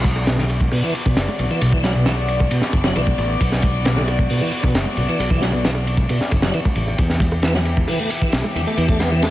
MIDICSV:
0, 0, Header, 1, 6, 480
1, 0, Start_track
1, 0, Key_signature, 2, "minor"
1, 0, Tempo, 447761
1, 1731, Time_signature, 4, 2, 24, 8
1, 9973, End_track
2, 0, Start_track
2, 0, Title_t, "String section"
2, 0, Program_c, 0, 48
2, 0, Note_on_c, 0, 59, 79
2, 0, Note_on_c, 0, 66, 75
2, 0, Note_on_c, 0, 74, 95
2, 7450, Note_off_c, 0, 66, 0
2, 7450, Note_off_c, 0, 74, 0
2, 7451, Note_off_c, 0, 59, 0
2, 7484, Note_on_c, 0, 59, 77
2, 7487, Note_on_c, 0, 52, 82
2, 7489, Note_on_c, 0, 67, 90
2, 9973, Note_off_c, 0, 52, 0
2, 9973, Note_off_c, 0, 59, 0
2, 9973, Note_off_c, 0, 67, 0
2, 9973, End_track
3, 0, Start_track
3, 0, Title_t, "Tonewheel organ"
3, 0, Program_c, 1, 16
3, 296, Note_on_c, 1, 47, 77
3, 403, Note_off_c, 1, 47, 0
3, 416, Note_on_c, 1, 50, 97
3, 477, Note_off_c, 1, 50, 0
3, 773, Note_on_c, 1, 47, 77
3, 887, Note_off_c, 1, 47, 0
3, 895, Note_on_c, 1, 52, 75
3, 1007, Note_off_c, 1, 52, 0
3, 1136, Note_on_c, 1, 47, 77
3, 1247, Note_off_c, 1, 47, 0
3, 1496, Note_on_c, 1, 47, 74
3, 1558, Note_off_c, 1, 47, 0
3, 1615, Note_on_c, 1, 52, 98
3, 1726, Note_off_c, 1, 52, 0
3, 1732, Note_on_c, 1, 47, 82
3, 1847, Note_off_c, 1, 47, 0
3, 1854, Note_on_c, 1, 52, 80
3, 1966, Note_off_c, 1, 52, 0
3, 1970, Note_on_c, 1, 54, 74
3, 2078, Note_off_c, 1, 54, 0
3, 2093, Note_on_c, 1, 47, 75
3, 2205, Note_off_c, 1, 47, 0
3, 2211, Note_on_c, 1, 52, 96
3, 2275, Note_off_c, 1, 52, 0
3, 2692, Note_on_c, 1, 47, 79
3, 2807, Note_off_c, 1, 47, 0
3, 3054, Note_on_c, 1, 54, 72
3, 3160, Note_off_c, 1, 54, 0
3, 3168, Note_on_c, 1, 52, 104
3, 3234, Note_off_c, 1, 52, 0
3, 4131, Note_on_c, 1, 47, 74
3, 4240, Note_off_c, 1, 47, 0
3, 4251, Note_on_c, 1, 50, 100
3, 4315, Note_off_c, 1, 50, 0
3, 4612, Note_on_c, 1, 47, 76
3, 4727, Note_off_c, 1, 47, 0
3, 4730, Note_on_c, 1, 52, 75
3, 4844, Note_off_c, 1, 52, 0
3, 4972, Note_on_c, 1, 47, 78
3, 5085, Note_off_c, 1, 47, 0
3, 5329, Note_on_c, 1, 47, 75
3, 5394, Note_off_c, 1, 47, 0
3, 5452, Note_on_c, 1, 52, 99
3, 5565, Note_off_c, 1, 52, 0
3, 5572, Note_on_c, 1, 47, 81
3, 5687, Note_off_c, 1, 47, 0
3, 5690, Note_on_c, 1, 52, 77
3, 5804, Note_off_c, 1, 52, 0
3, 5809, Note_on_c, 1, 54, 72
3, 5917, Note_off_c, 1, 54, 0
3, 5932, Note_on_c, 1, 47, 77
3, 6045, Note_off_c, 1, 47, 0
3, 6050, Note_on_c, 1, 52, 91
3, 6115, Note_off_c, 1, 52, 0
3, 6534, Note_on_c, 1, 47, 79
3, 6648, Note_off_c, 1, 47, 0
3, 6895, Note_on_c, 1, 54, 76
3, 7000, Note_off_c, 1, 54, 0
3, 7012, Note_on_c, 1, 52, 105
3, 7076, Note_off_c, 1, 52, 0
3, 7971, Note_on_c, 1, 52, 78
3, 8080, Note_off_c, 1, 52, 0
3, 8095, Note_on_c, 1, 54, 98
3, 8157, Note_off_c, 1, 54, 0
3, 8453, Note_on_c, 1, 52, 76
3, 8567, Note_off_c, 1, 52, 0
3, 8573, Note_on_c, 1, 57, 79
3, 8686, Note_off_c, 1, 57, 0
3, 8813, Note_on_c, 1, 52, 77
3, 8925, Note_off_c, 1, 52, 0
3, 9174, Note_on_c, 1, 52, 79
3, 9237, Note_off_c, 1, 52, 0
3, 9294, Note_on_c, 1, 57, 98
3, 9406, Note_off_c, 1, 57, 0
3, 9413, Note_on_c, 1, 52, 82
3, 9527, Note_off_c, 1, 52, 0
3, 9534, Note_on_c, 1, 57, 77
3, 9646, Note_off_c, 1, 57, 0
3, 9652, Note_on_c, 1, 59, 70
3, 9759, Note_off_c, 1, 59, 0
3, 9774, Note_on_c, 1, 52, 75
3, 9886, Note_off_c, 1, 52, 0
3, 9894, Note_on_c, 1, 57, 96
3, 9957, Note_off_c, 1, 57, 0
3, 9973, End_track
4, 0, Start_track
4, 0, Title_t, "Fingered electric bass"
4, 0, Program_c, 2, 33
4, 0, Note_on_c, 2, 35, 96
4, 728, Note_off_c, 2, 35, 0
4, 1250, Note_on_c, 2, 30, 82
4, 1345, Note_off_c, 2, 30, 0
4, 1492, Note_on_c, 2, 35, 87
4, 1586, Note_off_c, 2, 35, 0
4, 1732, Note_on_c, 2, 35, 91
4, 2650, Note_off_c, 2, 35, 0
4, 2929, Note_on_c, 2, 30, 90
4, 3118, Note_off_c, 2, 30, 0
4, 3170, Note_on_c, 2, 35, 90
4, 3358, Note_off_c, 2, 35, 0
4, 3411, Note_on_c, 2, 33, 96
4, 3599, Note_off_c, 2, 33, 0
4, 3654, Note_on_c, 2, 35, 99
4, 4571, Note_off_c, 2, 35, 0
4, 5088, Note_on_c, 2, 30, 81
4, 5184, Note_off_c, 2, 30, 0
4, 5326, Note_on_c, 2, 35, 88
4, 5423, Note_off_c, 2, 35, 0
4, 5568, Note_on_c, 2, 35, 91
4, 6488, Note_off_c, 2, 35, 0
4, 6776, Note_on_c, 2, 30, 93
4, 6962, Note_off_c, 2, 30, 0
4, 7248, Note_on_c, 2, 33, 87
4, 7437, Note_off_c, 2, 33, 0
4, 7490, Note_on_c, 2, 40, 96
4, 8409, Note_off_c, 2, 40, 0
4, 8929, Note_on_c, 2, 35, 86
4, 9025, Note_off_c, 2, 35, 0
4, 9167, Note_on_c, 2, 40, 88
4, 9264, Note_off_c, 2, 40, 0
4, 9404, Note_on_c, 2, 40, 99
4, 9973, Note_off_c, 2, 40, 0
4, 9973, End_track
5, 0, Start_track
5, 0, Title_t, "Muted fingered electric bass strokes"
5, 1135, Note_on_c, 9, 29, 43
5, 1243, Note_off_c, 9, 29, 0
5, 4972, Note_on_c, 9, 29, 43
5, 5079, Note_off_c, 9, 29, 0
5, 8808, Note_on_c, 9, 29, 41
5, 8915, Note_off_c, 9, 29, 0
5, 9973, End_track
6, 0, Start_track
6, 0, Title_t, "Drums"
6, 42, Note_on_c, 9, 63, 94
6, 47, Note_on_c, 9, 36, 92
6, 52, Note_on_c, 9, 51, 69
6, 149, Note_off_c, 9, 63, 0
6, 155, Note_off_c, 9, 36, 0
6, 159, Note_off_c, 9, 51, 0
6, 169, Note_on_c, 9, 60, 80
6, 276, Note_off_c, 9, 60, 0
6, 290, Note_on_c, 9, 38, 118
6, 291, Note_on_c, 9, 51, 86
6, 397, Note_off_c, 9, 38, 0
6, 398, Note_off_c, 9, 51, 0
6, 409, Note_on_c, 9, 38, 56
6, 516, Note_off_c, 9, 38, 0
6, 530, Note_on_c, 9, 60, 55
6, 531, Note_on_c, 9, 51, 65
6, 637, Note_off_c, 9, 60, 0
6, 638, Note_off_c, 9, 51, 0
6, 649, Note_on_c, 9, 36, 83
6, 653, Note_on_c, 9, 63, 62
6, 757, Note_off_c, 9, 36, 0
6, 760, Note_off_c, 9, 63, 0
6, 767, Note_on_c, 9, 60, 78
6, 774, Note_on_c, 9, 46, 86
6, 875, Note_off_c, 9, 60, 0
6, 881, Note_off_c, 9, 46, 0
6, 1014, Note_on_c, 9, 51, 66
6, 1122, Note_off_c, 9, 51, 0
6, 1134, Note_on_c, 9, 60, 48
6, 1135, Note_on_c, 9, 36, 92
6, 1135, Note_on_c, 9, 64, 82
6, 1241, Note_off_c, 9, 60, 0
6, 1242, Note_off_c, 9, 36, 0
6, 1242, Note_off_c, 9, 64, 0
6, 1251, Note_on_c, 9, 38, 114
6, 1251, Note_on_c, 9, 51, 96
6, 1358, Note_off_c, 9, 38, 0
6, 1359, Note_off_c, 9, 51, 0
6, 1374, Note_on_c, 9, 63, 97
6, 1379, Note_on_c, 9, 60, 82
6, 1481, Note_off_c, 9, 63, 0
6, 1486, Note_off_c, 9, 60, 0
6, 1489, Note_on_c, 9, 51, 60
6, 1596, Note_off_c, 9, 51, 0
6, 1613, Note_on_c, 9, 51, 40
6, 1720, Note_off_c, 9, 51, 0
6, 1729, Note_on_c, 9, 51, 90
6, 1730, Note_on_c, 9, 60, 52
6, 1837, Note_off_c, 9, 51, 0
6, 1837, Note_off_c, 9, 60, 0
6, 1849, Note_on_c, 9, 36, 92
6, 1956, Note_off_c, 9, 36, 0
6, 1965, Note_on_c, 9, 60, 69
6, 1969, Note_on_c, 9, 63, 94
6, 1971, Note_on_c, 9, 51, 69
6, 1972, Note_on_c, 9, 38, 59
6, 2072, Note_off_c, 9, 60, 0
6, 2076, Note_off_c, 9, 63, 0
6, 2078, Note_off_c, 9, 51, 0
6, 2079, Note_off_c, 9, 38, 0
6, 2206, Note_on_c, 9, 38, 107
6, 2206, Note_on_c, 9, 51, 88
6, 2313, Note_off_c, 9, 51, 0
6, 2314, Note_off_c, 9, 38, 0
6, 2321, Note_on_c, 9, 60, 54
6, 2429, Note_off_c, 9, 60, 0
6, 2445, Note_on_c, 9, 51, 67
6, 2553, Note_off_c, 9, 51, 0
6, 2569, Note_on_c, 9, 60, 72
6, 2573, Note_on_c, 9, 63, 68
6, 2577, Note_on_c, 9, 36, 80
6, 2676, Note_off_c, 9, 60, 0
6, 2680, Note_off_c, 9, 63, 0
6, 2684, Note_off_c, 9, 36, 0
6, 2687, Note_on_c, 9, 51, 91
6, 2794, Note_off_c, 9, 51, 0
6, 2805, Note_on_c, 9, 38, 54
6, 2912, Note_off_c, 9, 38, 0
6, 2926, Note_on_c, 9, 60, 46
6, 2927, Note_on_c, 9, 51, 65
6, 2928, Note_on_c, 9, 36, 98
6, 3034, Note_off_c, 9, 60, 0
6, 3035, Note_off_c, 9, 36, 0
6, 3035, Note_off_c, 9, 51, 0
6, 3044, Note_on_c, 9, 38, 112
6, 3048, Note_on_c, 9, 64, 81
6, 3151, Note_off_c, 9, 38, 0
6, 3155, Note_off_c, 9, 64, 0
6, 3168, Note_on_c, 9, 51, 83
6, 3175, Note_on_c, 9, 60, 84
6, 3275, Note_off_c, 9, 51, 0
6, 3283, Note_off_c, 9, 60, 0
6, 3284, Note_on_c, 9, 63, 102
6, 3290, Note_on_c, 9, 36, 95
6, 3391, Note_off_c, 9, 63, 0
6, 3398, Note_off_c, 9, 36, 0
6, 3408, Note_on_c, 9, 51, 69
6, 3515, Note_off_c, 9, 51, 0
6, 3528, Note_on_c, 9, 60, 52
6, 3635, Note_off_c, 9, 60, 0
6, 3653, Note_on_c, 9, 36, 109
6, 3655, Note_on_c, 9, 51, 89
6, 3760, Note_off_c, 9, 36, 0
6, 3763, Note_off_c, 9, 51, 0
6, 3770, Note_on_c, 9, 60, 68
6, 3775, Note_on_c, 9, 38, 46
6, 3877, Note_off_c, 9, 60, 0
6, 3882, Note_off_c, 9, 38, 0
6, 3882, Note_on_c, 9, 51, 71
6, 3893, Note_on_c, 9, 36, 104
6, 3893, Note_on_c, 9, 63, 96
6, 3990, Note_off_c, 9, 51, 0
6, 4000, Note_off_c, 9, 36, 0
6, 4000, Note_off_c, 9, 63, 0
6, 4128, Note_on_c, 9, 51, 85
6, 4131, Note_on_c, 9, 60, 46
6, 4137, Note_on_c, 9, 38, 109
6, 4235, Note_off_c, 9, 51, 0
6, 4238, Note_off_c, 9, 60, 0
6, 4244, Note_off_c, 9, 38, 0
6, 4248, Note_on_c, 9, 38, 58
6, 4355, Note_off_c, 9, 38, 0
6, 4369, Note_on_c, 9, 51, 63
6, 4372, Note_on_c, 9, 60, 79
6, 4476, Note_off_c, 9, 51, 0
6, 4479, Note_off_c, 9, 60, 0
6, 4488, Note_on_c, 9, 63, 72
6, 4490, Note_on_c, 9, 36, 89
6, 4595, Note_off_c, 9, 63, 0
6, 4597, Note_off_c, 9, 36, 0
6, 4606, Note_on_c, 9, 46, 75
6, 4713, Note_off_c, 9, 46, 0
6, 4721, Note_on_c, 9, 60, 52
6, 4828, Note_off_c, 9, 60, 0
6, 4840, Note_on_c, 9, 51, 73
6, 4947, Note_off_c, 9, 51, 0
6, 4963, Note_on_c, 9, 64, 88
6, 4966, Note_on_c, 9, 60, 81
6, 4971, Note_on_c, 9, 36, 90
6, 5071, Note_off_c, 9, 64, 0
6, 5073, Note_off_c, 9, 60, 0
6, 5078, Note_off_c, 9, 36, 0
6, 5090, Note_on_c, 9, 51, 91
6, 5094, Note_on_c, 9, 38, 119
6, 5197, Note_off_c, 9, 51, 0
6, 5201, Note_off_c, 9, 38, 0
6, 5202, Note_on_c, 9, 63, 92
6, 5309, Note_off_c, 9, 63, 0
6, 5323, Note_on_c, 9, 51, 73
6, 5333, Note_on_c, 9, 60, 46
6, 5431, Note_off_c, 9, 51, 0
6, 5440, Note_off_c, 9, 60, 0
6, 5453, Note_on_c, 9, 51, 40
6, 5560, Note_off_c, 9, 51, 0
6, 5574, Note_on_c, 9, 51, 87
6, 5574, Note_on_c, 9, 60, 72
6, 5681, Note_off_c, 9, 51, 0
6, 5681, Note_off_c, 9, 60, 0
6, 5685, Note_on_c, 9, 36, 93
6, 5792, Note_off_c, 9, 36, 0
6, 5794, Note_on_c, 9, 63, 92
6, 5809, Note_on_c, 9, 38, 51
6, 5814, Note_on_c, 9, 51, 66
6, 5901, Note_off_c, 9, 63, 0
6, 5916, Note_off_c, 9, 38, 0
6, 5921, Note_off_c, 9, 51, 0
6, 5927, Note_on_c, 9, 60, 47
6, 6034, Note_off_c, 9, 60, 0
6, 6054, Note_on_c, 9, 38, 113
6, 6055, Note_on_c, 9, 51, 85
6, 6160, Note_on_c, 9, 60, 76
6, 6161, Note_off_c, 9, 38, 0
6, 6162, Note_off_c, 9, 51, 0
6, 6267, Note_off_c, 9, 60, 0
6, 6293, Note_on_c, 9, 51, 64
6, 6400, Note_off_c, 9, 51, 0
6, 6404, Note_on_c, 9, 36, 81
6, 6411, Note_on_c, 9, 63, 66
6, 6511, Note_off_c, 9, 36, 0
6, 6518, Note_off_c, 9, 63, 0
6, 6528, Note_on_c, 9, 51, 93
6, 6536, Note_on_c, 9, 60, 51
6, 6635, Note_off_c, 9, 51, 0
6, 6643, Note_off_c, 9, 60, 0
6, 6656, Note_on_c, 9, 38, 43
6, 6764, Note_off_c, 9, 38, 0
6, 6767, Note_on_c, 9, 51, 65
6, 6768, Note_on_c, 9, 60, 70
6, 6775, Note_on_c, 9, 36, 103
6, 6874, Note_off_c, 9, 51, 0
6, 6875, Note_off_c, 9, 60, 0
6, 6882, Note_off_c, 9, 36, 0
6, 6886, Note_on_c, 9, 38, 103
6, 6890, Note_on_c, 9, 64, 85
6, 6993, Note_off_c, 9, 38, 0
6, 6997, Note_off_c, 9, 64, 0
6, 7006, Note_on_c, 9, 51, 80
6, 7113, Note_off_c, 9, 51, 0
6, 7129, Note_on_c, 9, 60, 50
6, 7133, Note_on_c, 9, 36, 103
6, 7133, Note_on_c, 9, 63, 92
6, 7236, Note_off_c, 9, 60, 0
6, 7240, Note_off_c, 9, 36, 0
6, 7240, Note_off_c, 9, 63, 0
6, 7241, Note_on_c, 9, 51, 67
6, 7348, Note_off_c, 9, 51, 0
6, 7368, Note_on_c, 9, 60, 69
6, 7476, Note_off_c, 9, 60, 0
6, 7483, Note_on_c, 9, 51, 84
6, 7489, Note_on_c, 9, 36, 110
6, 7591, Note_off_c, 9, 51, 0
6, 7596, Note_off_c, 9, 36, 0
6, 7607, Note_on_c, 9, 38, 44
6, 7614, Note_on_c, 9, 60, 46
6, 7714, Note_off_c, 9, 38, 0
6, 7720, Note_on_c, 9, 63, 85
6, 7721, Note_off_c, 9, 60, 0
6, 7721, Note_on_c, 9, 36, 108
6, 7735, Note_on_c, 9, 51, 71
6, 7827, Note_off_c, 9, 63, 0
6, 7828, Note_off_c, 9, 36, 0
6, 7842, Note_off_c, 9, 51, 0
6, 7845, Note_on_c, 9, 60, 76
6, 7952, Note_off_c, 9, 60, 0
6, 7959, Note_on_c, 9, 51, 79
6, 7965, Note_on_c, 9, 38, 104
6, 8066, Note_off_c, 9, 51, 0
6, 8072, Note_off_c, 9, 38, 0
6, 8087, Note_on_c, 9, 38, 50
6, 8195, Note_off_c, 9, 38, 0
6, 8202, Note_on_c, 9, 51, 63
6, 8209, Note_on_c, 9, 60, 47
6, 8309, Note_off_c, 9, 51, 0
6, 8317, Note_off_c, 9, 60, 0
6, 8329, Note_on_c, 9, 63, 61
6, 8331, Note_on_c, 9, 36, 87
6, 8436, Note_off_c, 9, 63, 0
6, 8438, Note_off_c, 9, 36, 0
6, 8443, Note_on_c, 9, 60, 77
6, 8445, Note_on_c, 9, 46, 88
6, 8550, Note_off_c, 9, 60, 0
6, 8552, Note_off_c, 9, 46, 0
6, 8685, Note_on_c, 9, 51, 70
6, 8792, Note_off_c, 9, 51, 0
6, 8808, Note_on_c, 9, 36, 84
6, 8809, Note_on_c, 9, 64, 80
6, 8814, Note_on_c, 9, 60, 48
6, 8915, Note_off_c, 9, 36, 0
6, 8917, Note_off_c, 9, 64, 0
6, 8922, Note_off_c, 9, 60, 0
6, 8922, Note_on_c, 9, 51, 91
6, 8930, Note_on_c, 9, 38, 110
6, 9029, Note_off_c, 9, 51, 0
6, 9037, Note_off_c, 9, 38, 0
6, 9048, Note_on_c, 9, 60, 82
6, 9051, Note_on_c, 9, 63, 104
6, 9155, Note_off_c, 9, 60, 0
6, 9158, Note_off_c, 9, 63, 0
6, 9177, Note_on_c, 9, 51, 68
6, 9284, Note_off_c, 9, 51, 0
6, 9297, Note_on_c, 9, 51, 38
6, 9399, Note_on_c, 9, 60, 45
6, 9405, Note_off_c, 9, 51, 0
6, 9405, Note_on_c, 9, 51, 90
6, 9506, Note_off_c, 9, 60, 0
6, 9512, Note_off_c, 9, 51, 0
6, 9526, Note_on_c, 9, 36, 96
6, 9633, Note_off_c, 9, 36, 0
6, 9644, Note_on_c, 9, 60, 77
6, 9645, Note_on_c, 9, 63, 82
6, 9647, Note_on_c, 9, 51, 69
6, 9650, Note_on_c, 9, 38, 50
6, 9752, Note_off_c, 9, 60, 0
6, 9752, Note_off_c, 9, 63, 0
6, 9754, Note_off_c, 9, 51, 0
6, 9757, Note_off_c, 9, 38, 0
6, 9887, Note_on_c, 9, 51, 84
6, 9894, Note_on_c, 9, 38, 104
6, 9973, Note_off_c, 9, 38, 0
6, 9973, Note_off_c, 9, 51, 0
6, 9973, End_track
0, 0, End_of_file